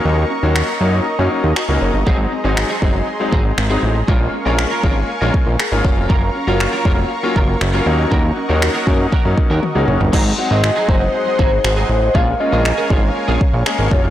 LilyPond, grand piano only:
\new Staff \with { instrumentName = "Grand piano" } { \time 4/4 \key ees \dorian \tempo 4 = 119 <ges bes des' ees'>8 r16 <ges bes des' ges'>8 r16 <ges bes des' ees'>8 r16 <ges bes des' ees'>8 r8 <ges bes des' ees'>8 r16 | <ges aes c' ees'>8 r16 <ges aes c' ees'>8 r16 <ges aes c' ees'>8 r16 <ges aes c' ees'>8 r8 <ges aes c' ees'>8 r16 | <aes bes des' f'>8 r16 <aes bes des' f'>8 r16 <aes bes des' f'>8 r16 <aes bes des' f'>8 r8 <aes bes des' f'>16 <ges bes des' f'>8~ | <ges bes des' f'>8 r16 <ges bes des' f'>8 r16 <ges bes des' f'>8 r16 <ges bes des' f'>8 r8 <ges bes des' f'>16 <ges bes des' ees'>8~ |
<ges bes des' ees'>8 r16 <ges bes des' ees'>8 r16 <ges bes des' ees'>8 r16 <ges bes des' ees'>8 r8 <ges bes des' ees'>8 r16 | <ges aes c' ees'>16 r16 <ges aes c' ees'>8 r8 <ges aes c' ees'>4~ <ges aes c' ees'>16 r4 r16 | <aes bes des' f'>16 r16 <aes bes des' f'>8 r8 <aes bes des' f'>4 r8 <aes bes des' aes'>8 <ges bes des' f'>8 | }